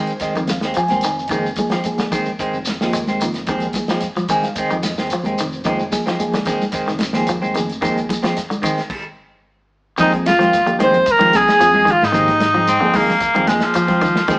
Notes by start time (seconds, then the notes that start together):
Already playing: D#3 G#3 C4 C5
0.07 closed hi-hat, shekere
0.20 D#3 G#3 C4 D#5, kick, closed hi-hat, high conga, shekere
0.35 F2 D#3, closed hi-hat, shekere
0.47 F5, snare, closed hi-hat, high conga, shekere
0.61 D#2 C4, snare, shekere
0.65 G#3
0.74 F3, closed hi-hat, shekere
0.78 G#5
0.88 D#2 C4, snare, closed hi-hat, high conga, shekere
1.01 F1 D#3, closed hi-hat, shekere
1.19 shekere
1.27 F1 D#3 F3 A#3 D#4, kick, closed hi-hat, low conga, shekere
1.32 G#3 C4 G#4
1.46 shekere
1.56 F3 A#3 D#4 G#4, kick, closed hi-hat, high conga, shekere
1.70 F3 G#3 C4, snare, closed hi-hat, shekere
1.84 F3 A#3 D#4 G#4, closed hi-hat, high conga, shekere
1.98 D3, snare, closed hi-hat, high conga, shekere
2.12 D#3 G#3 C4, kick, closed hi-hat, low conga, shekere
2.26 low conga, shekere
2.39 D#3 G#3 C4, kick, closed hi-hat, high conga, shekere
2.54 F1, shekere
2.65 snare, closed hi-hat, high conga, shekere
2.81 D#2 F3 G#3 A#3 C4 D#4 F4, snare, shekere
2.93 G#3, closed hi-hat, shekere
3.07 G#3 C4, snare, high conga, shekere
3.20 F1 D#3 F3 A#3 D#4 F4, closed hi-hat, shekere
3.34 snare, closed hi-hat, shekere
3.46 D#2 D#3 F3 G#3 A#3 C4 D#4 G#4, kick, closed hi-hat, low conga, shekere
3.60 closed hi-hat, shekere
3.73 kick, snare, closed hi-hat, high conga, shekere
3.88 F3 G#3 C4, snare, closed hi-hat, shekere
4.00 closed hi-hat, high conga, shekere
4.16 F3, closed hi-hat, high conga, shekere
4.28 D#3 G#3 C4 G#5, kick, closed hi-hat, low conga, shekere
4.43 F5, closed hi-hat, high conga, shekere
4.55 D#3 G#3 C4 D#5, kick, closed hi-hat, shekere
4.70 F2 D#3, closed hi-hat, shekere
4.83 snare, closed hi-hat, high conga, shekere
4.98 D#2 G#3 C4, snare, shekere
5.10 F3 C5, closed hi-hat, shekere
5.23 D#2 G#3 C4, closed hi-hat, high conga, shekere
5.38 F1 D#3, closed hi-hat, high conga, shekere
5.52 shekere
5.64 F1 D#3 F3 G#3 A#3 C4 D#4 F4, muted clean electric guitar stroke, kick, closed hi-hat, low conga, shekere
5.79 shekere
5.91 F3 A#3 D#4 G#4, kick, snare, closed hi-hat, high conga, shekere
6.06 F3 G#3 C4, snare, closed hi-hat, shekere
6.19 F3 A#3 D#4 G#4, closed hi-hat, high conga, shekere
6.33 D3, snare, closed hi-hat, high conga, shekere
6.45 D#3 G#3 C4, kick, closed hi-hat, low conga, shekere
6.61 high conga, shekere
6.72 D#3 G#3 C4, kick, closed hi-hat, shekere
6.76 high conga
6.87 F1 D#3, snare, shekere
6.99 snare, closed hi-hat, high conga
7.03 shekere
7.13 D#2 F3 G#3 A#3 C4 D#4 G#4, snare, shekere
7.27 F3, closed hi-hat, shekere
7.42 G#3 C4, high conga, shekere
7.54 F1 D#3 F3 A#3 D#4 G#4, closed hi-hat, high conga, shekere
7.69 closed hi-hat, shekere
7.81 D#2 D#3 F3 G#3 A#3 C4 D#4 G#4, kick, closed hi-hat, low conga, shekere
7.97 closed hi-hat, shekere
8.09 kick, closed hi-hat, high conga, shekere
8.23 F3 G#3 C4, snare, closed hi-hat, shekere
8.36 snare, closed hi-hat, high conga, shekere
8.50 D3, closed hi-hat, high conga, shekere
8.62 D#3 G#3 C4, kick, closed hi-hat, low conga, shekere
8.78 snare, closed hi-hat, shekere
8.90 kick, crash
9.98 F2 D#3 F3 G#3 A#3 C4 D#4 G#4, muted clean electric guitar stroke, kick, closed hi-hat, low conga, shekere
10.02 D#4
10.12 kick, closed hi-hat
10.26 F4, snare, closed hi-hat, high conga, shekere
10.31 F4
10.39 D#2 F3 C4, snare, closed hi-hat, high conga
10.53 snare, closed hi-hat, shekere
10.67 D3 F3 A#3 D#4 G4, closed hi-hat
10.78 D#2 D#3 G#3 C4 C5, closed hi-hat, high conga, shekere
10.84 C5
10.93 F2, closed hi-hat, low conga
11.06 kick, closed hi-hat, shekere
11.11 A#4
11.19 D#3 F3 G#3 C4, high conga
11.33 C2 F3 A#3 D#4 G#4, snare, closed hi-hat, shekere
11.39 G#4
11.48 snare, closed hi-hat
11.60 F2 F3, closed hi-hat, shekere
11.74 G#3, muted clean electric guitar stroke, high conga
11.85 D#3, kick, closed hi-hat, low conga, shekere
11.91 F4
12.02 G#2 D#4, snare
12.07 D#4
12.12 D#3 F3 G#3 A#3 C4 D#4 G4, kick, closed hi-hat, low conga, shekere
12.28 kick, snare, closed hi-hat
12.40 snare, closed hi-hat, high conga, shekere
12.54 F3 G#3 C4, high conga
12.67 C4, snare, closed hi-hat, shekere
12.80 F2 D3 F3 A#3 D#4 G#4
12.93 D#3 G#3 A#3, kick, open hi-hat, high conga, shekere
13.09 snare, low conga
13.20 kick, closed hi-hat, shekere
13.35 F2 D#3 G#3 C4, closed hi-hat, high conga
13.46 F3 G#3 A#3 D#4 G#4, snare, closed hi-hat, shekere
13.60 snare, closed hi-hat
13.64 F3
13.74 F3, closed hi-hat, shekere
13.88 F3 C4, kick, snare, closed hi-hat, high conga
14.01 D#3, kick, closed hi-hat, low conga, shekere
14.16 snare
14.28 F2 D#3 F3 G#3 A#3 C4 D#4 G#4, kick, closed hi-hat, low conga, shekere